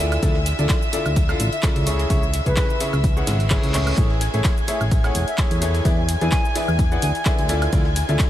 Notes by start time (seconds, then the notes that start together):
Already playing: D2 E5 E6
0.00 D3 E4 F4 A4 D5 E5
0.12 closed hi-hat, ride, high woodblock, shaker
0.23 D2 D3 E4 F4 A4 D5 E5, kick, closed hi-hat, ride, shaker
0.35 snare
0.46 snare, open hi-hat, ride, shaker
0.59 D2 D3 E4 F4 A4 D5 E5, closed hi-hat, shaker
0.69 kick, snare, clap, closed hi-hat, ride, shaker
0.82 shaker
0.93 D3 E4 F4 A4 D5 E5, open hi-hat, ride, shaker
1.06 D2, ride, high woodblock, shaker
1.16 kick, closed hi-hat, ride, shaker
1.29 D3 E4 F4 A4 D5 F5, snare, high woodblock, shaker
1.40 A1, open hi-hat, ride, shaker
1.52 E5, closed hi-hat, shaker
1.63 C#3 E4 F4 A4 D5 E5, kick, snare, clap, closed hi-hat, ride, shaker
1.76 C#2, closed hi-hat, ride
1.87 C#3 C#4 E4 G#4 C#5 E5, open hi-hat, ride, shaker
1.99 snare, closed hi-hat, shaker
2.10 C#2 C#3 C#4 E4 G#4 C#5 E5, kick, closed hi-hat, ride, shaker
2.23 shaker
2.34 open hi-hat, ride, shaker
2.46 C#2 C#3 C#4 E4 G#4 B4 C#5 E5, kick, closed hi-hat, shaker
2.56 kick, snare, clap, closed hi-hat, ride, shaker
2.70 shaker
2.80 C#3 C#4 E4 G#4 C#5 E5, open hi-hat, ride, shaker
2.93 C#2, snare, high woodblock, shaker
3.04 kick, closed hi-hat, ride, reverse cymbal, shaker
3.17 C#3 C#4 E4 G#4 C#5 F#5, shaker
3.27 G#1, snare, open hi-hat, ride, shaker
3.40 closed hi-hat, ride, shaker
3.50 C#3 C#4 E4 G#4 C#5 E5, kick, snare, clap, closed hi-hat, ride, shaker
3.63 C#2, closed hi-hat, shaker
3.74 A2 C#4 E4 G#4 C#5 E5, clap, open hi-hat, ride, shaker
3.87 closed hi-hat, ride, high woodblock, shaker
3.98 A1 A3 E4 G#4 A4 C#5 E5 G#5 G#6, kick, closed hi-hat, ride, shaker
4.10 snare
4.21 snare, open hi-hat, ride, shaker
4.34 A1 A3 E4 G#4 A4 C#5 E5, closed hi-hat, shaker
4.44 kick, snare, clap, closed hi-hat, ride, shaker
4.58 shaker
4.68 A3 E4 G#4 A4 C#5 E5, open hi-hat, ride, shaker
4.81 A1, ride, high woodblock, shaker
4.91 kick, closed hi-hat, ride, shaker
5.04 A3 E4 G#4 A4 C#5 F#5, snare, high woodblock, shaker
5.15 E1, open hi-hat, ride, shaker
5.27 E5, closed hi-hat, shaker
5.38 A3 E4 G#4 A4 C#5 E5, kick, snare, clap, closed hi-hat, ride, shaker
5.51 E2, closed hi-hat, ride
5.62 E3 E4 G#4 A4 C#5 E5, open hi-hat, ride, shaker
5.74 snare, closed hi-hat, shaker
5.85 E2 E3 E4 G#4 B4 D5 E5, kick, closed hi-hat, ride, shaker
6.08 open hi-hat, ride, shaker
6.21 E2 E3 E4 G#4 B4 D5 E5 G#5, closed hi-hat, shaker
6.32 kick, snare, clap, closed hi-hat, ride, shaker
6.45 shaker
6.55 E3 E4 G#4 B4 D5 E5, open hi-hat, shaker
6.68 E2, high woodblock, shaker
6.79 kick, closed hi-hat, ride, shaker
6.92 E3 E4 G#4 B4 D5 F#5, shaker
7.02 D2 G#5, open hi-hat, ride, shaker
7.15 G#5, closed hi-hat, shaker
7.25 D3 E4 G#4 B4 D5 E5, kick, snare, clap, closed hi-hat, ride, shaker
7.39 D2, closed hi-hat
7.49 D3 E4 F4 A4 D5 E5, open hi-hat, ride, shaker
7.62 closed hi-hat, ride, high woodblock, shaker
7.73 D2 D3 E4 F4 A4 D5 E5, kick, closed hi-hat, ride, shaker
7.85 snare
7.96 snare, open hi-hat, ride, shaker
8.09 D2 D3 E4 F4 A4 D5 E5, closed hi-hat, shaker
8.19 kick, snare, clap, closed hi-hat, ride, shaker